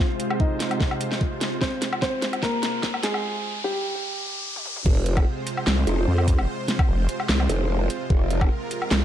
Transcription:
Already playing: C3 G#3 F4 C5 F5, riser
0.20 closed hi-hat
0.30 low woodblock
0.40 D#4 D#5, kick
0.60 snare, closed hi-hat
0.71 closed hi-hat, low woodblock
0.80 kick, snare
0.91 low woodblock
1.01 closed hi-hat
1.11 snare
1.21 kick
1.41 snare, closed hi-hat
1.61 C4 C5, kick, snare
1.82 snare, closed hi-hat
1.93 low woodblock
2.02 C4 C5, kick, snare
2.22 snare, closed hi-hat
2.33 closed hi-hat, low woodblock
2.43 A#3 A#4, kick, snare
2.63 snare, closed hi-hat
2.83 kick, snare
2.94 low woodblock
3.03 G#3 G#4, snare, closed hi-hat
3.14 low woodblock
3.64 G3 G4
4.56 high tom
4.66 mid tom
4.76 mid tom
4.86 F1 C3 G#3 F4 C5, kick, crash
5.06 closed hi-hat
5.17 kick, low woodblock
5.47 closed hi-hat
5.57 low woodblock
5.67 C2, snare, clap
5.87 F1, closed hi-hat
6.07 F2
6.18 low woodblock
6.28 kick, closed hi-hat
6.39 low woodblock
6.68 snare, closed hi-hat
6.79 kick, low woodblock
6.88 F1
7.09 closed hi-hat
7.20 low woodblock
7.29 C2, snare, clap
7.40 low woodblock
7.49 F1, closed hi-hat
7.90 closed hi-hat
8.10 F1 A#4, kick
8.30 closed hi-hat
8.41 kick, low woodblock
8.71 closed hi-hat
8.82 low woodblock
8.91 C2, snare, clap

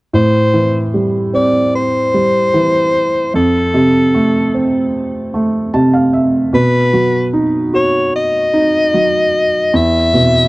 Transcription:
0.13 A2 C5
0.54 E3
0.94 G3
1.33 C4 D5
1.75 C5
2.14 G3
2.54 E3
3.34 F2 A4
3.74 C3
4.14 A3
4.54 C4
5.34 A3
5.74 C3 A5
5.93 F5
6.13 E5
6.53 B2 B4
6.93 F#3
7.33 D#4
7.73 F#4 C#5
8.16 D#5
8.53 D#4
8.94 F#3
9.73 E2 E5
10.13 B2

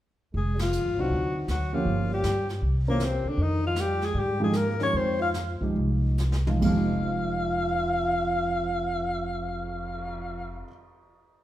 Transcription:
0.34 F1 G#3 G#4, brush sweep
0.58 F3 F4, snare, ride
0.72 hi-hat pedal
0.84 G#1
0.96 C2 F#3 C4 D4 D#4 F#4
1.00 F#4
1.09 D2, brush sweep
1.48 D2 F#3 F#4, snare, hi-hat pedal
1.73 F3 A#3 C#4 F4 G4
1.85 G1, brush sweep
2.09 G3
2.14 G4
2.23 G2, snare, hi-hat pedal
2.49 snare
2.61 C2, brush sweep
2.87 A#2 E3 A#3 C4 C#4 A#4
3.00 C3, snare, hi-hat pedal
3.05 C4
3.25 D3, muted upright bass stroke
3.29 D4
3.37 F2 D#3, brush sweep
3.42 D#4
3.64 F3 F4
3.76 G3, snare, hi-hat pedal
3.81 G4
4.01 G#3 G#4, snare
4.14 G#2 G3, brush sweep
4.19 G4
4.40 F3 G#3 D#4 G4
4.44 G#4
4.52 A#3 A#4, snare, hi-hat pedal
4.79 F3 G#3 C#4 D#4 G4 C#5, snare
4.93 F2 C4 C5, brush sweep
5.20 F4 F5
5.34 snare, hi-hat pedal
5.61 F#2 F3 G#3 D#4 G4, kick
5.75 C2, brush sweep
6.18 snare, hi-hat pedal
6.32 snare
6.47 F3 G#3 D#4 F4, mid tom
6.60 F1 F2 F3 G#3 D#4, kick, crash
6.65 G4 F5
6.92 cymbal swell

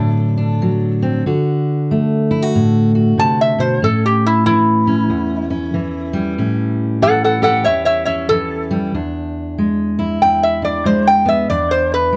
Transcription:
Already playing: A2 D3 F#3 C4 D4 A4
0.37 D4
0.62 F#3
1.02 C4
1.26 D3 F#4
1.91 A3
2.31 E4
2.42 F#4
2.55 A2
2.95 F#4
3.18 C3 A5
3.41 E5
3.58 B2 C5
3.82 A2 C#4 A4
4.06 G4
4.26 E4
4.46 E3 E4
4.87 C#4
5.10 E2
5.50 C#4
5.74 E3
6.13 G3
6.38 A2 C#4
7.02 E3 A4 F#5
7.24 A4 F#5
7.42 G4 A4 F#5
7.64 E2 C#5 E5
7.85 C#5 E5
8.05 C#4 C#5 E5
8.29 E3 A4
8.71 G3
8.95 E2 D4
9.58 G#3
9.99 E4
10.22 E2 G5
10.43 E5
10.62 D4 D5
10.85 G#3 C5
11.07 G5
11.26 B3 E5
11.49 E2 D4 D5
11.71 C5
11.94 B4
12.13 G#3

